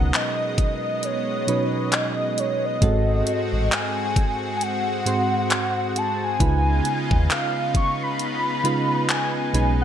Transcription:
Already playing: sub bass C#2, synth keys B2 F#3 C#4 D#4 A#4, analog synth pad G#3 B3 D#5, soft synth lead F#5
0.14 soft synth lead D#5, clap, closed hi-hat
0.58 kick, closed hi-hat
1.03 soft synth lead C#5, closed hi-hat
1.47 synth keys B2 F#3 C#4 D#4 B4, closed hi-hat
1.92 soft synth lead D#5, clap, closed hi-hat
2.38 soft synth lead C#5, closed hi-hat
2.65 soft synth lead D#5
2.81 sub bass G#1, synth keys G#2 G#3 C4 F#4 A4, analog synth pad G#3 C4 F#4, kick, closed hi-hat
3.27 closed hi-hat
3.53 sub bass A1
3.72 soft synth lead G#5, clap, closed hi-hat
4.16 kick, closed hi-hat
4.57 soft synth lead G#5
4.61 soft synth lead F#5, closed hi-hat
5.05 synth keys G#2 G#3 C4 F#4 C5, closed hi-hat
5.50 clap, closed hi-hat
5.96 soft synth lead A5, closed hi-hat
6.24 soft synth lead G#5
6.39 sub bass C#2, synth keys C#3 G#3 D#4 F4 B4, analog synth pad C#3 B3 D#4 F4, kick, closed hi-hat
6.85 closed hi-hat
7.11 sub bass D#2, kick
7.30 soft synth lead F5, clap, closed hi-hat
7.75 soft synth lead C#6, kick, closed hi-hat
8.03 soft synth lead B5
8.19 closed hi-hat
8.64 synth keys C#3 G#3 D#4 F4 B4, closed hi-hat
9.09 soft synth lead G#5, clap, closed hi-hat
9.53 sub bass B1, synth keys B2 G#3 C#4 D#4 B4, analog synth pad G#3, soft synth lead G#5, closed hi-hat

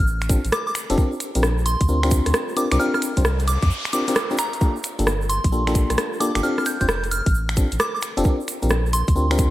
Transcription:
0.00 sub bass A1
0.07 shaker
0.21 finger snap, closed hi-hat, shaker
0.29 fm electric piano C4 D4 F4 G4 A4, kick, closed hi-hat, shaker
0.45 sub bass A1, closed hi-hat, shaker
0.52 synth bell D6, cross-stick, closed hi-hat, shaker
0.67 synth bell D6, shaker
0.75 finger snap, closed hi-hat, shaker
0.90 sub bass F1, fm electric piano C4 D4 F4 G4 A4, closed hi-hat, shaker
0.98 fm electric piano D4 F4 A#4, kick, shaker
1.12 shaker
1.20 finger snap, closed hi-hat, shaker
1.35 sub bass A#1, fm electric piano C4 D4 F4 G4 A#4, closed hi-hat, shaker
1.43 cross-stick, shaker
1.58 shaker
1.66 synth bell C6, closed hi-hat, shaker
1.81 sub bass D2, kick, closed hi-hat, shaker
1.88 fm electric piano C4 D4 F4 G4 A#4, shaker
2.03 fm electric piano C4 D4 F4 G4 A#4, finger snap, closed hi-hat, shaker
2.11 kick, closed hi-hat, shaker
2.26 sub bass D2, cross-stick, closed hi-hat, shaker
2.33 cross-stick, closed hi-hat, shaker
2.48 shaker
2.57 fm electric piano C4 D4 F4 G4 A#4, synth bell D6, closed hi-hat, shaker
2.72 sub bass C2, fm electric piano C4 D4 F4 G4 A#4, synth bell D6, finger snap, closed hi-hat, shaker
2.79 fm electric piano C4 D4 F4 G4 A#4, synth bell F6, noise sweep, shaker
2.94 synth bell F6, cross-stick, shaker
3.02 finger snap, closed hi-hat, shaker
3.17 sub bass C2, fm electric piano C4 D4 F4 G4 C5, kick, closed hi-hat, shaker
3.24 cross-stick, shaker
3.40 closed hi-hat, shaker
3.48 synth bell D6, closed hi-hat, shaker
3.62 sub bass F2, synth bell D6, kick, closed hi-hat, shaker
3.70 shaker
3.85 finger snap, closed hi-hat, shaker
3.93 fm electric piano C4 D4 F4 G4 A#4, synth bell D6, closed hi-hat, shaker
4.08 fm electric piano C4 D4 F4 G4 A#4, closed hi-hat, shaker
4.15 cross-stick, closed hi-hat, shaker
4.31 fm electric piano C4 D4 F4 G4 A#4, shaker
4.38 synth bell A#5, finger snap, closed hi-hat, shaker
4.53 closed hi-hat, shaker
4.61 fm electric piano A#3 D4 F4 G4 A4, kick, shaker
4.76 shaker
4.83 finger snap, closed hi-hat, shaker
4.99 sub bass G1, fm electric piano A#3 D4 F4 G4 A4, closed hi-hat, shaker
5.07 cross-stick, shaker
5.21 shaker
5.29 synth bell C6, closed hi-hat, shaker
5.44 sub bass A#1, kick, closed hi-hat, shaker
5.52 fm electric piano A#3 D4 F4 G4 A4, shaker
5.67 fm electric piano A#3 D4 F4 G4 A4, finger snap, closed hi-hat, shaker
5.75 kick, closed hi-hat, shaker
5.90 sub bass A#1, cross-stick, closed hi-hat, shaker
5.97 cross-stick, closed hi-hat, shaker
6.13 shaker
6.20 fm electric piano A#3 D4 F4 G4 A4, synth bell D6, closed hi-hat, shaker
6.35 sub bass G1, fm electric piano A#3 D4 F4 G4 A4, synth bell D6, finger snap, closed hi-hat, shaker
6.43 fm electric piano C4 D4 F4 G4 A4, synth bell F6, shaker
6.58 synth bell F6, cross-stick, shaker
6.66 synth bell G6, finger snap, closed hi-hat, shaker
6.81 sub bass F1, fm electric piano C4 D4 F4 G4 C5, synth bell G6, kick, closed hi-hat, shaker
6.88 cross-stick, shaker
7.04 closed hi-hat, shaker
7.11 synth bell F6, closed hi-hat, shaker
7.26 sub bass A1, kick, closed hi-hat, shaker
7.34 shaker
7.49 finger snap, closed hi-hat, shaker
7.57 fm electric piano C4 D4 F4 G4 A4, kick, closed hi-hat, shaker
7.72 sub bass A1, closed hi-hat, shaker
7.79 synth bell D6, cross-stick, closed hi-hat, shaker
7.95 synth bell D6, shaker
8.02 finger snap, closed hi-hat, shaker
8.17 sub bass F1, fm electric piano C4 D4 F4 G4 A4, closed hi-hat, shaker
8.24 fm electric piano C4 D4 F4 A#4, kick, shaker
8.40 shaker
8.48 finger snap, closed hi-hat, shaker
8.62 sub bass A#1, fm electric piano C4 D4 F4 G4 A#4, closed hi-hat, shaker
8.70 cross-stick, shaker
8.86 shaker
8.93 synth bell C6, closed hi-hat, shaker
9.08 sub bass D2, kick, closed hi-hat, shaker
9.16 fm electric piano C4 D4 F4 G4 A#4, shaker
9.31 fm electric piano C4 D4 F4 G4 A#4, finger snap, closed hi-hat, shaker
9.38 kick, closed hi-hat, shaker

